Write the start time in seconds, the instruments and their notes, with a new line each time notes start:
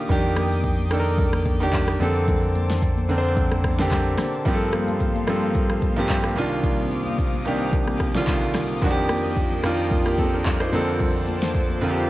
Already playing: grand piano D3 D#3 A#3 D4 F4 G4, analog synth pad A#3 D6 D#6
0.09 fingered electric bass F2, grand piano D#3 A#3 D4 G4, analog synth pad G5, kick, low conga, shaker
0.24 shaker
0.36 cross-stick, high conga, shaker
0.52 high conga, shaker
0.64 kick, shaker
0.79 high conga, shaker
0.91 grand piano D#3 A#3 D4 A4, cross-stick, shaker
1.00 grand piano A#4
1.06 shaker
1.18 kick, low conga, shaker
1.33 cross-stick, high conga, shaker
1.46 kick, high conga, shaker
1.60 grand piano D#3 A#3 D4 G4, shaker
1.73 kick, clap, low conga, shaker
1.88 cross-stick, shaker
1.99 fingered electric bass F2, grand piano D3 A#3 C4 A4, analog synth pad C5 A5, high conga, shaker
2.15 shaker
2.27 kick, low conga, shaker
2.42 shaker
2.55 high conga, shaker
2.70 snare, high conga, shaker
2.82 kick, shaker
2.97 high conga, shaker
3.09 grand piano D3 A#3 C4 A#4, shaker
3.18 grand piano C5
3.24 shaker
3.36 kick, low conga, shaker
3.51 cross-stick, high conga, shaker
3.64 kick, cross-stick, high conga, shaker
3.78 grand piano D3 A#3 C4 G4, snare, shaker
3.91 kick, clap, low conga, shaker
4.06 shaker
4.18 cross-stick, snare, high conga, shaker
4.33 shaker
4.45 grand piano G2 F3 A#3 C4 G4, analog synth pad G3 A#3 F5 C6, kick, low conga, shaker
4.54 grand piano A4
4.61 shaker
4.73 cross-stick, high conga, shaker
4.88 high conga, shaker
5.00 kick, shaker
5.16 high conga, shaker
5.27 grand piano G2 F3 A#3 C4 A4, cross-stick, shaker
5.43 shaker
5.54 kick, low conga, shaker
5.70 cross-stick, high conga, shaker
5.82 kick, high conga, shaker
5.96 grand piano G2 F3 A#3 C4 G4, shaker
6.09 kick, clap, low conga, shaker
6.24 cross-stick, shaker
6.36 grand piano C2 D#3 A#3 D4 F4, analog synth pad C4 F5 D6 D#6, high conga, shaker
6.52 shaker
6.64 kick, low conga, shaker
6.79 shaker
6.91 high conga, shaker
7.06 high conga, shaker
7.18 kick, shaker
7.34 high conga, shaker
7.45 grand piano C2 D#3 A#3 D4 G4, shaker
7.61 shaker
7.72 kick, low conga, shaker
7.88 cross-stick, high conga, shaker
8.00 kick, cross-stick, high conga, shaker
8.15 grand piano C2 D3 A#3 D4 F4, snare, shaker
8.22 grand piano D#3
8.27 kick, clap, low conga, shaker
8.42 shaker
8.54 cross-stick, snare, high conga, shaker
8.70 shaker
8.81 grand piano F2 D#3 A#3 D4 F#4, analog synth pad F4 A#4 G5, kick, low conga, shaker
8.91 grand piano G4
8.97 shaker
9.09 cross-stick, high conga, shaker
9.24 high conga, shaker
9.37 kick, shaker
9.52 high conga, shaker
9.63 grand piano F2 D#3 A#3 D4 F4, cross-stick, shaker
9.79 shaker
9.91 kick, low conga, shaker
10.06 grand piano A#3 G4, cross-stick, high conga, shaker
10.18 grand piano C4 A4, kick, high conga, shaker
10.33 grand piano D4 A#4, shaker
10.46 kick, clap, low conga, shaker
10.60 grand piano D#4 C5, cross-stick, shaker
10.72 grand piano F2 D3 A#3 C4 A4, analog synth pad C5 A5, high conga, shaker
10.88 shaker
11.00 kick, low conga, shaker
11.15 shaker
11.27 high conga, shaker
11.42 snare, high conga, shaker
11.55 kick, shaker
11.70 high conga, shaker
11.81 grand piano F2 D3 A#3 C4 F4, shaker
11.91 grand piano G4
11.97 shaker